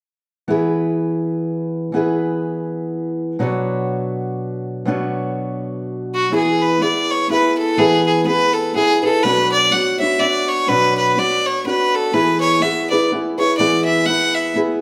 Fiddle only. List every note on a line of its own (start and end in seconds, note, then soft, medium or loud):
6.15 6.32 F#4 medium
6.35 6.63 G#4 medium
6.62 6.83 B4 medium
6.82 7.12 D5 medium
7.11 7.31 C#5 medium
7.31 7.56 B4 medium
7.58 7.80 A4 medium
7.79 8.06 G#4 medium
8.06 8.25 G#4 medium
8.27 8.55 B4 medium
8.53 8.74 A4 medium
8.76 9.01 G#4 medium
9.04 9.25 A4 medium
9.23 9.51 B4 loud
9.52 9.73 D5 medium
9.72 9.99 F#5 medium
10.00 10.22 E5 medium
10.20 10.50 D5 medium
10.48 10.70 C#5 medium
10.68 10.96 B4 medium
10.97 11.20 B4 medium
11.19 11.48 D5 medium
11.46 11.66 C#5 medium
11.66 11.96 B4 medium
11.95 12.16 A4 medium
12.14 12.40 B4 medium
12.41 12.63 C#5 medium
12.62 12.90 E5 medium
12.90 13.09 D5 medium
13.39 13.57 C#5 medium
13.57 13.84 D5 medium
13.85 14.07 E5 medium
14.06 14.36 F#5 medium
14.35 14.56 E5 medium